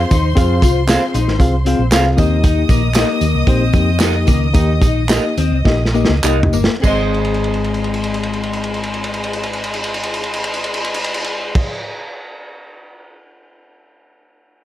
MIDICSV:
0, 0, Header, 1, 7, 480
1, 0, Start_track
1, 0, Key_signature, -4, "major"
1, 0, Tempo, 518135
1, 338, Time_signature, 4, 2, 24, 8
1, 3219, Tempo, 545951
1, 5139, Tempo, 588813
1, 6099, Tempo, 608519
1, 12255, End_track
2, 0, Start_track
2, 0, Title_t, "Violin section"
2, 0, Program_c, 0, 48
2, 0, Note_on_c, 0, 72, 92
2, 0, Note_on_c, 0, 84, 104
2, 1735, Note_off_c, 0, 72, 0
2, 1737, Note_off_c, 0, 84, 0
2, 2002, Note_on_c, 0, 75, 85
2, 2009, Note_on_c, 0, 87, 101
2, 5572, Note_off_c, 0, 75, 0
2, 5575, Note_off_c, 0, 87, 0
2, 6094, Note_on_c, 0, 84, 94
2, 6096, Note_on_c, 0, 68, 87
2, 6096, Note_on_c, 0, 75, 87
2, 9880, Note_off_c, 0, 84, 0
2, 9881, Note_off_c, 0, 68, 0
2, 9881, Note_off_c, 0, 75, 0
2, 12255, End_track
3, 0, Start_track
3, 0, Title_t, "Clean electric guitar"
3, 0, Program_c, 1, 27
3, 822, Note_on_c, 1, 68, 82
3, 830, Note_on_c, 1, 72, 79
3, 833, Note_on_c, 1, 77, 84
3, 928, Note_off_c, 1, 68, 0
3, 932, Note_off_c, 1, 72, 0
3, 934, Note_off_c, 1, 77, 0
3, 1778, Note_on_c, 1, 68, 82
3, 1786, Note_on_c, 1, 72, 90
3, 1790, Note_on_c, 1, 77, 100
3, 1885, Note_off_c, 1, 68, 0
3, 1889, Note_off_c, 1, 72, 0
3, 1891, Note_off_c, 1, 77, 0
3, 2731, Note_on_c, 1, 67, 76
3, 2737, Note_on_c, 1, 70, 86
3, 2742, Note_on_c, 1, 75, 86
3, 2842, Note_off_c, 1, 67, 0
3, 2845, Note_off_c, 1, 70, 0
3, 2847, Note_off_c, 1, 75, 0
3, 3685, Note_on_c, 1, 67, 95
3, 3692, Note_on_c, 1, 70, 100
3, 3697, Note_on_c, 1, 75, 103
3, 3791, Note_off_c, 1, 67, 0
3, 3794, Note_off_c, 1, 70, 0
3, 3797, Note_off_c, 1, 75, 0
3, 4642, Note_on_c, 1, 67, 80
3, 4648, Note_on_c, 1, 70, 89
3, 4654, Note_on_c, 1, 75, 101
3, 4753, Note_off_c, 1, 67, 0
3, 4756, Note_off_c, 1, 70, 0
3, 4759, Note_off_c, 1, 75, 0
3, 5615, Note_on_c, 1, 67, 86
3, 5620, Note_on_c, 1, 70, 90
3, 5623, Note_on_c, 1, 75, 92
3, 5721, Note_off_c, 1, 67, 0
3, 5724, Note_off_c, 1, 70, 0
3, 5725, Note_off_c, 1, 75, 0
3, 6088, Note_on_c, 1, 68, 76
3, 6110, Note_on_c, 1, 72, 80
3, 6127, Note_on_c, 1, 75, 90
3, 9909, Note_off_c, 1, 68, 0
3, 9919, Note_off_c, 1, 72, 0
3, 9928, Note_off_c, 1, 75, 0
3, 12255, End_track
4, 0, Start_track
4, 0, Title_t, "Reed electric piano"
4, 0, Program_c, 2, 4
4, 0, Note_on_c, 2, 60, 89
4, 0, Note_on_c, 2, 65, 83
4, 0, Note_on_c, 2, 68, 81
4, 0, Note_on_c, 2, 77, 104
4, 124, Note_off_c, 2, 60, 0
4, 129, Note_off_c, 2, 65, 0
4, 132, Note_off_c, 2, 68, 0
4, 134, Note_off_c, 2, 77, 0
4, 330, Note_on_c, 2, 60, 118
4, 336, Note_on_c, 2, 65, 94
4, 340, Note_on_c, 2, 68, 100
4, 350, Note_on_c, 2, 77, 122
4, 604, Note_off_c, 2, 60, 0
4, 607, Note_off_c, 2, 65, 0
4, 609, Note_off_c, 2, 68, 0
4, 614, Note_off_c, 2, 77, 0
4, 811, Note_on_c, 2, 60, 92
4, 818, Note_on_c, 2, 65, 77
4, 823, Note_on_c, 2, 68, 83
4, 829, Note_on_c, 2, 77, 98
4, 1084, Note_off_c, 2, 60, 0
4, 1087, Note_off_c, 2, 65, 0
4, 1090, Note_off_c, 2, 68, 0
4, 1093, Note_off_c, 2, 77, 0
4, 1288, Note_on_c, 2, 60, 102
4, 1297, Note_on_c, 2, 65, 95
4, 1303, Note_on_c, 2, 68, 90
4, 1308, Note_on_c, 2, 77, 117
4, 1427, Note_off_c, 2, 60, 0
4, 1431, Note_off_c, 2, 65, 0
4, 1435, Note_off_c, 2, 68, 0
4, 1437, Note_off_c, 2, 77, 0
4, 1531, Note_on_c, 2, 60, 80
4, 1539, Note_on_c, 2, 65, 76
4, 1544, Note_on_c, 2, 68, 79
4, 1551, Note_on_c, 2, 77, 95
4, 1668, Note_off_c, 2, 60, 0
4, 1672, Note_off_c, 2, 65, 0
4, 1675, Note_off_c, 2, 68, 0
4, 1678, Note_off_c, 2, 77, 0
4, 1770, Note_on_c, 2, 60, 93
4, 1776, Note_on_c, 2, 65, 80
4, 1782, Note_on_c, 2, 68, 84
4, 1788, Note_on_c, 2, 77, 102
4, 2008, Note_on_c, 2, 58, 96
4, 2012, Note_off_c, 2, 60, 0
4, 2014, Note_on_c, 2, 63, 87
4, 2015, Note_off_c, 2, 65, 0
4, 2018, Note_off_c, 2, 68, 0
4, 2020, Note_on_c, 2, 51, 81
4, 2021, Note_off_c, 2, 77, 0
4, 2021, Note_on_c, 2, 67, 83
4, 2028, Note_on_c, 2, 75, 116
4, 2587, Note_off_c, 2, 58, 0
4, 2590, Note_off_c, 2, 63, 0
4, 2593, Note_off_c, 2, 67, 0
4, 2597, Note_off_c, 2, 75, 0
4, 2700, Note_off_c, 2, 51, 0
4, 2736, Note_on_c, 2, 58, 90
4, 2739, Note_on_c, 2, 63, 83
4, 2742, Note_on_c, 2, 67, 77
4, 2750, Note_on_c, 2, 75, 95
4, 3007, Note_off_c, 2, 58, 0
4, 3009, Note_off_c, 2, 63, 0
4, 3011, Note_off_c, 2, 67, 0
4, 3015, Note_off_c, 2, 75, 0
4, 3215, Note_on_c, 2, 58, 90
4, 3220, Note_on_c, 2, 63, 92
4, 3225, Note_on_c, 2, 67, 88
4, 3232, Note_on_c, 2, 72, 109
4, 3348, Note_off_c, 2, 58, 0
4, 3350, Note_off_c, 2, 63, 0
4, 3352, Note_off_c, 2, 67, 0
4, 3356, Note_off_c, 2, 72, 0
4, 3450, Note_on_c, 2, 58, 82
4, 3452, Note_on_c, 2, 63, 74
4, 3458, Note_on_c, 2, 67, 75
4, 3464, Note_on_c, 2, 75, 93
4, 3582, Note_off_c, 2, 58, 0
4, 3583, Note_off_c, 2, 63, 0
4, 3586, Note_off_c, 2, 67, 0
4, 3589, Note_off_c, 2, 75, 0
4, 3675, Note_on_c, 2, 58, 92
4, 3680, Note_on_c, 2, 63, 80
4, 3687, Note_on_c, 2, 67, 87
4, 3691, Note_on_c, 2, 75, 96
4, 3918, Note_on_c, 2, 51, 83
4, 3946, Note_off_c, 2, 58, 0
4, 3948, Note_off_c, 2, 63, 0
4, 3952, Note_off_c, 2, 67, 0
4, 3953, Note_off_c, 2, 75, 0
4, 4150, Note_on_c, 2, 58, 112
4, 4157, Note_on_c, 2, 63, 102
4, 4164, Note_on_c, 2, 67, 97
4, 4168, Note_on_c, 2, 75, 127
4, 4425, Note_off_c, 2, 58, 0
4, 4429, Note_off_c, 2, 63, 0
4, 4432, Note_off_c, 2, 67, 0
4, 4434, Note_off_c, 2, 75, 0
4, 4606, Note_off_c, 2, 51, 0
4, 4637, Note_on_c, 2, 58, 83
4, 4643, Note_on_c, 2, 63, 80
4, 4647, Note_on_c, 2, 67, 79
4, 4653, Note_on_c, 2, 75, 98
4, 4917, Note_off_c, 2, 58, 0
4, 4920, Note_off_c, 2, 63, 0
4, 4922, Note_off_c, 2, 67, 0
4, 4925, Note_off_c, 2, 75, 0
4, 5128, Note_on_c, 2, 58, 90
4, 5132, Note_on_c, 2, 63, 79
4, 5143, Note_on_c, 2, 67, 84
4, 5145, Note_on_c, 2, 75, 111
4, 5265, Note_off_c, 2, 58, 0
4, 5267, Note_off_c, 2, 63, 0
4, 5272, Note_off_c, 2, 67, 0
4, 5273, Note_off_c, 2, 75, 0
4, 5370, Note_on_c, 2, 58, 79
4, 5373, Note_on_c, 2, 63, 72
4, 5379, Note_on_c, 2, 67, 71
4, 5382, Note_on_c, 2, 75, 88
4, 5505, Note_off_c, 2, 58, 0
4, 5506, Note_off_c, 2, 63, 0
4, 5509, Note_off_c, 2, 67, 0
4, 5511, Note_off_c, 2, 75, 0
4, 5607, Note_on_c, 2, 58, 85
4, 5611, Note_on_c, 2, 63, 80
4, 5618, Note_on_c, 2, 67, 83
4, 5622, Note_on_c, 2, 75, 100
4, 5881, Note_off_c, 2, 58, 0
4, 5884, Note_off_c, 2, 63, 0
4, 5887, Note_off_c, 2, 67, 0
4, 5889, Note_off_c, 2, 75, 0
4, 6070, Note_on_c, 2, 60, 80
4, 6099, Note_on_c, 2, 44, 82
4, 6100, Note_on_c, 2, 68, 79
4, 6130, Note_on_c, 2, 75, 85
4, 9868, Note_off_c, 2, 60, 0
4, 9882, Note_off_c, 2, 44, 0
4, 9882, Note_off_c, 2, 68, 0
4, 9898, Note_off_c, 2, 75, 0
4, 12255, End_track
5, 0, Start_track
5, 0, Title_t, "Clean electric guitar"
5, 0, Program_c, 3, 27
5, 103, Note_on_c, 3, 63, 69
5, 263, Note_off_c, 3, 63, 0
5, 342, Note_on_c, 3, 65, 82
5, 503, Note_off_c, 3, 65, 0
5, 587, Note_on_c, 3, 65, 70
5, 746, Note_off_c, 3, 65, 0
5, 1064, Note_on_c, 3, 63, 84
5, 1224, Note_off_c, 3, 63, 0
5, 1545, Note_on_c, 3, 60, 74
5, 1704, Note_off_c, 3, 60, 0
5, 2023, Note_on_c, 3, 60, 72
5, 2182, Note_off_c, 3, 60, 0
5, 2258, Note_on_c, 3, 63, 75
5, 2419, Note_off_c, 3, 63, 0
5, 2498, Note_on_c, 3, 58, 73
5, 2659, Note_off_c, 3, 58, 0
5, 2744, Note_on_c, 3, 58, 81
5, 3195, Note_off_c, 3, 58, 0
5, 3221, Note_on_c, 3, 60, 78
5, 3658, Note_off_c, 3, 60, 0
5, 3922, Note_on_c, 3, 58, 76
5, 4083, Note_off_c, 3, 58, 0
5, 4158, Note_on_c, 3, 63, 85
5, 4321, Note_off_c, 3, 63, 0
5, 4398, Note_on_c, 3, 63, 78
5, 4563, Note_off_c, 3, 63, 0
5, 4894, Note_on_c, 3, 60, 89
5, 5060, Note_off_c, 3, 60, 0
5, 5370, Note_on_c, 3, 58, 67
5, 5532, Note_off_c, 3, 58, 0
5, 5853, Note_on_c, 3, 58, 71
5, 6019, Note_off_c, 3, 58, 0
5, 6094, Note_on_c, 3, 56, 76
5, 9880, Note_off_c, 3, 56, 0
5, 12255, End_track
6, 0, Start_track
6, 0, Title_t, "Fingered electric bass"
6, 0, Program_c, 4, 33
6, 104, Note_on_c, 4, 39, 96
6, 308, Note_off_c, 4, 39, 0
6, 343, Note_on_c, 4, 41, 112
6, 547, Note_off_c, 4, 41, 0
6, 579, Note_on_c, 4, 36, 86
6, 888, Note_off_c, 4, 36, 0
6, 1060, Note_on_c, 4, 34, 88
6, 1162, Note_off_c, 4, 34, 0
6, 1186, Note_on_c, 4, 32, 98
6, 1285, Note_off_c, 4, 32, 0
6, 1295, Note_on_c, 4, 36, 108
6, 1604, Note_off_c, 4, 36, 0
6, 1658, Note_on_c, 4, 34, 96
6, 1780, Note_off_c, 4, 34, 0
6, 1780, Note_on_c, 4, 36, 90
6, 1984, Note_off_c, 4, 36, 0
6, 2024, Note_on_c, 4, 39, 96
6, 2432, Note_off_c, 4, 39, 0
6, 2495, Note_on_c, 4, 34, 88
6, 2805, Note_off_c, 4, 34, 0
6, 2975, Note_on_c, 4, 39, 71
6, 3080, Note_off_c, 4, 39, 0
6, 3099, Note_on_c, 4, 36, 94
6, 3203, Note_off_c, 4, 36, 0
6, 3217, Note_on_c, 4, 34, 100
6, 3417, Note_off_c, 4, 34, 0
6, 3450, Note_on_c, 4, 41, 93
6, 3927, Note_on_c, 4, 37, 96
6, 3940, Note_off_c, 4, 41, 0
6, 4128, Note_off_c, 4, 37, 0
6, 4163, Note_on_c, 4, 39, 99
6, 4368, Note_off_c, 4, 39, 0
6, 4397, Note_on_c, 4, 34, 94
6, 4713, Note_off_c, 4, 34, 0
6, 4890, Note_on_c, 4, 39, 81
6, 4996, Note_off_c, 4, 39, 0
6, 5013, Note_on_c, 4, 36, 99
6, 5120, Note_off_c, 4, 36, 0
6, 5137, Note_on_c, 4, 34, 102
6, 5441, Note_off_c, 4, 34, 0
6, 5491, Note_on_c, 4, 37, 97
6, 5594, Note_off_c, 4, 37, 0
6, 5609, Note_on_c, 4, 36, 89
6, 5818, Note_off_c, 4, 36, 0
6, 5850, Note_on_c, 4, 31, 95
6, 5956, Note_off_c, 4, 31, 0
6, 6099, Note_on_c, 4, 32, 96
6, 9882, Note_off_c, 4, 32, 0
6, 12255, End_track
7, 0, Start_track
7, 0, Title_t, "Drums"
7, 100, Note_on_c, 9, 54, 67
7, 102, Note_on_c, 9, 42, 84
7, 104, Note_on_c, 9, 36, 102
7, 193, Note_off_c, 9, 54, 0
7, 195, Note_off_c, 9, 42, 0
7, 197, Note_off_c, 9, 36, 0
7, 339, Note_on_c, 9, 54, 62
7, 341, Note_on_c, 9, 36, 120
7, 341, Note_on_c, 9, 42, 93
7, 432, Note_off_c, 9, 54, 0
7, 433, Note_off_c, 9, 42, 0
7, 434, Note_off_c, 9, 36, 0
7, 577, Note_on_c, 9, 36, 102
7, 580, Note_on_c, 9, 42, 96
7, 587, Note_on_c, 9, 54, 65
7, 669, Note_off_c, 9, 36, 0
7, 672, Note_off_c, 9, 42, 0
7, 680, Note_off_c, 9, 54, 0
7, 820, Note_on_c, 9, 42, 91
7, 822, Note_on_c, 9, 39, 102
7, 822, Note_on_c, 9, 54, 90
7, 828, Note_on_c, 9, 38, 110
7, 912, Note_off_c, 9, 42, 0
7, 914, Note_off_c, 9, 39, 0
7, 914, Note_off_c, 9, 54, 0
7, 920, Note_off_c, 9, 38, 0
7, 1059, Note_on_c, 9, 42, 71
7, 1066, Note_on_c, 9, 54, 56
7, 1152, Note_off_c, 9, 42, 0
7, 1159, Note_off_c, 9, 54, 0
7, 1184, Note_on_c, 9, 38, 38
7, 1277, Note_off_c, 9, 38, 0
7, 1294, Note_on_c, 9, 36, 94
7, 1298, Note_on_c, 9, 42, 83
7, 1305, Note_on_c, 9, 54, 40
7, 1387, Note_off_c, 9, 36, 0
7, 1391, Note_off_c, 9, 42, 0
7, 1398, Note_off_c, 9, 54, 0
7, 1538, Note_on_c, 9, 42, 79
7, 1630, Note_off_c, 9, 42, 0
7, 1777, Note_on_c, 9, 39, 100
7, 1777, Note_on_c, 9, 54, 106
7, 1779, Note_on_c, 9, 42, 87
7, 1781, Note_on_c, 9, 38, 98
7, 1870, Note_off_c, 9, 39, 0
7, 1870, Note_off_c, 9, 54, 0
7, 1872, Note_off_c, 9, 42, 0
7, 1873, Note_off_c, 9, 38, 0
7, 2019, Note_on_c, 9, 54, 58
7, 2024, Note_on_c, 9, 36, 98
7, 2027, Note_on_c, 9, 42, 78
7, 2111, Note_off_c, 9, 54, 0
7, 2116, Note_off_c, 9, 36, 0
7, 2120, Note_off_c, 9, 42, 0
7, 2256, Note_on_c, 9, 54, 60
7, 2260, Note_on_c, 9, 36, 121
7, 2262, Note_on_c, 9, 42, 87
7, 2349, Note_off_c, 9, 54, 0
7, 2353, Note_off_c, 9, 36, 0
7, 2355, Note_off_c, 9, 42, 0
7, 2494, Note_on_c, 9, 36, 108
7, 2498, Note_on_c, 9, 54, 60
7, 2501, Note_on_c, 9, 42, 90
7, 2587, Note_off_c, 9, 36, 0
7, 2590, Note_off_c, 9, 54, 0
7, 2594, Note_off_c, 9, 42, 0
7, 2728, Note_on_c, 9, 39, 93
7, 2728, Note_on_c, 9, 54, 94
7, 2736, Note_on_c, 9, 42, 103
7, 2744, Note_on_c, 9, 38, 106
7, 2820, Note_off_c, 9, 39, 0
7, 2820, Note_off_c, 9, 54, 0
7, 2828, Note_off_c, 9, 42, 0
7, 2836, Note_off_c, 9, 38, 0
7, 2974, Note_on_c, 9, 54, 50
7, 2975, Note_on_c, 9, 42, 61
7, 3067, Note_off_c, 9, 54, 0
7, 3068, Note_off_c, 9, 42, 0
7, 3215, Note_on_c, 9, 36, 97
7, 3220, Note_on_c, 9, 42, 78
7, 3303, Note_off_c, 9, 36, 0
7, 3308, Note_off_c, 9, 42, 0
7, 3445, Note_on_c, 9, 54, 37
7, 3447, Note_on_c, 9, 42, 70
7, 3449, Note_on_c, 9, 36, 92
7, 3533, Note_off_c, 9, 54, 0
7, 3535, Note_off_c, 9, 42, 0
7, 3537, Note_off_c, 9, 36, 0
7, 3680, Note_on_c, 9, 39, 97
7, 3680, Note_on_c, 9, 54, 97
7, 3685, Note_on_c, 9, 42, 79
7, 3686, Note_on_c, 9, 38, 99
7, 3768, Note_off_c, 9, 39, 0
7, 3768, Note_off_c, 9, 54, 0
7, 3773, Note_off_c, 9, 42, 0
7, 3774, Note_off_c, 9, 38, 0
7, 3918, Note_on_c, 9, 54, 61
7, 3926, Note_on_c, 9, 36, 90
7, 3927, Note_on_c, 9, 42, 80
7, 4006, Note_off_c, 9, 54, 0
7, 4014, Note_off_c, 9, 36, 0
7, 4015, Note_off_c, 9, 42, 0
7, 4156, Note_on_c, 9, 54, 58
7, 4160, Note_on_c, 9, 42, 86
7, 4161, Note_on_c, 9, 36, 112
7, 4244, Note_off_c, 9, 54, 0
7, 4248, Note_off_c, 9, 42, 0
7, 4249, Note_off_c, 9, 36, 0
7, 4398, Note_on_c, 9, 36, 102
7, 4403, Note_on_c, 9, 54, 63
7, 4404, Note_on_c, 9, 42, 84
7, 4486, Note_off_c, 9, 36, 0
7, 4491, Note_off_c, 9, 54, 0
7, 4492, Note_off_c, 9, 42, 0
7, 4641, Note_on_c, 9, 39, 93
7, 4641, Note_on_c, 9, 54, 86
7, 4643, Note_on_c, 9, 42, 97
7, 4651, Note_on_c, 9, 38, 96
7, 4729, Note_off_c, 9, 39, 0
7, 4729, Note_off_c, 9, 54, 0
7, 4731, Note_off_c, 9, 42, 0
7, 4739, Note_off_c, 9, 38, 0
7, 4889, Note_on_c, 9, 54, 51
7, 4890, Note_on_c, 9, 42, 69
7, 4977, Note_off_c, 9, 54, 0
7, 4978, Note_off_c, 9, 42, 0
7, 5135, Note_on_c, 9, 36, 94
7, 5143, Note_on_c, 9, 38, 62
7, 5216, Note_off_c, 9, 36, 0
7, 5225, Note_off_c, 9, 38, 0
7, 5299, Note_on_c, 9, 38, 52
7, 5375, Note_on_c, 9, 54, 35
7, 5380, Note_off_c, 9, 38, 0
7, 5455, Note_on_c, 9, 38, 71
7, 5456, Note_off_c, 9, 54, 0
7, 5537, Note_off_c, 9, 38, 0
7, 5612, Note_on_c, 9, 39, 103
7, 5612, Note_on_c, 9, 54, 95
7, 5693, Note_off_c, 9, 39, 0
7, 5693, Note_off_c, 9, 54, 0
7, 5769, Note_on_c, 9, 43, 88
7, 5848, Note_on_c, 9, 54, 63
7, 5850, Note_off_c, 9, 43, 0
7, 5930, Note_off_c, 9, 54, 0
7, 5939, Note_on_c, 9, 38, 94
7, 6020, Note_off_c, 9, 38, 0
7, 6099, Note_on_c, 9, 36, 98
7, 6099, Note_on_c, 9, 49, 83
7, 6099, Note_on_c, 9, 54, 79
7, 6178, Note_off_c, 9, 36, 0
7, 6178, Note_off_c, 9, 49, 0
7, 6178, Note_off_c, 9, 54, 0
7, 6341, Note_on_c, 9, 57, 48
7, 6420, Note_off_c, 9, 57, 0
7, 6422, Note_on_c, 9, 51, 53
7, 6498, Note_on_c, 9, 57, 50
7, 6501, Note_off_c, 9, 51, 0
7, 6576, Note_on_c, 9, 51, 51
7, 6577, Note_off_c, 9, 57, 0
7, 6652, Note_on_c, 9, 57, 47
7, 6654, Note_off_c, 9, 51, 0
7, 6731, Note_off_c, 9, 57, 0
7, 6736, Note_on_c, 9, 51, 52
7, 6813, Note_on_c, 9, 57, 48
7, 6814, Note_off_c, 9, 51, 0
7, 6892, Note_off_c, 9, 57, 0
7, 6892, Note_on_c, 9, 51, 47
7, 6968, Note_on_c, 9, 57, 61
7, 6971, Note_off_c, 9, 51, 0
7, 7046, Note_on_c, 9, 51, 64
7, 7047, Note_off_c, 9, 57, 0
7, 7124, Note_off_c, 9, 51, 0
7, 7128, Note_on_c, 9, 57, 58
7, 7201, Note_on_c, 9, 51, 60
7, 7207, Note_off_c, 9, 57, 0
7, 7280, Note_off_c, 9, 51, 0
7, 7281, Note_on_c, 9, 57, 50
7, 7359, Note_off_c, 9, 57, 0
7, 7360, Note_on_c, 9, 51, 55
7, 7437, Note_on_c, 9, 57, 57
7, 7438, Note_off_c, 9, 51, 0
7, 7516, Note_off_c, 9, 57, 0
7, 7519, Note_on_c, 9, 51, 59
7, 7598, Note_off_c, 9, 51, 0
7, 7601, Note_on_c, 9, 57, 58
7, 7676, Note_on_c, 9, 51, 65
7, 7679, Note_off_c, 9, 57, 0
7, 7755, Note_off_c, 9, 51, 0
7, 7757, Note_on_c, 9, 57, 57
7, 7835, Note_off_c, 9, 57, 0
7, 7836, Note_on_c, 9, 51, 71
7, 7914, Note_on_c, 9, 57, 68
7, 7915, Note_off_c, 9, 51, 0
7, 7992, Note_on_c, 9, 51, 68
7, 7993, Note_off_c, 9, 57, 0
7, 8068, Note_on_c, 9, 57, 72
7, 8071, Note_off_c, 9, 51, 0
7, 8147, Note_off_c, 9, 57, 0
7, 8148, Note_on_c, 9, 51, 72
7, 8226, Note_on_c, 9, 57, 77
7, 8227, Note_off_c, 9, 51, 0
7, 8305, Note_off_c, 9, 57, 0
7, 8308, Note_on_c, 9, 51, 79
7, 8387, Note_off_c, 9, 51, 0
7, 8387, Note_on_c, 9, 57, 81
7, 8465, Note_off_c, 9, 57, 0
7, 8466, Note_on_c, 9, 51, 86
7, 8545, Note_off_c, 9, 51, 0
7, 8547, Note_on_c, 9, 57, 80
7, 8622, Note_on_c, 9, 51, 79
7, 8626, Note_off_c, 9, 57, 0
7, 8701, Note_off_c, 9, 51, 0
7, 8703, Note_on_c, 9, 57, 84
7, 8781, Note_on_c, 9, 51, 73
7, 8782, Note_off_c, 9, 57, 0
7, 8859, Note_on_c, 9, 57, 94
7, 8860, Note_off_c, 9, 51, 0
7, 8938, Note_off_c, 9, 57, 0
7, 8941, Note_on_c, 9, 51, 90
7, 9018, Note_on_c, 9, 57, 83
7, 9020, Note_off_c, 9, 51, 0
7, 9097, Note_off_c, 9, 57, 0
7, 9099, Note_on_c, 9, 51, 83
7, 9177, Note_on_c, 9, 57, 89
7, 9178, Note_off_c, 9, 51, 0
7, 9256, Note_off_c, 9, 57, 0
7, 9261, Note_on_c, 9, 51, 88
7, 9338, Note_on_c, 9, 57, 92
7, 9340, Note_off_c, 9, 51, 0
7, 9417, Note_off_c, 9, 57, 0
7, 9417, Note_on_c, 9, 51, 92
7, 9495, Note_on_c, 9, 57, 83
7, 9496, Note_off_c, 9, 51, 0
7, 9574, Note_off_c, 9, 57, 0
7, 9576, Note_on_c, 9, 51, 87
7, 9655, Note_off_c, 9, 51, 0
7, 9819, Note_on_c, 9, 36, 110
7, 9821, Note_on_c, 9, 49, 89
7, 9898, Note_off_c, 9, 36, 0
7, 9899, Note_off_c, 9, 49, 0
7, 12255, End_track
0, 0, End_of_file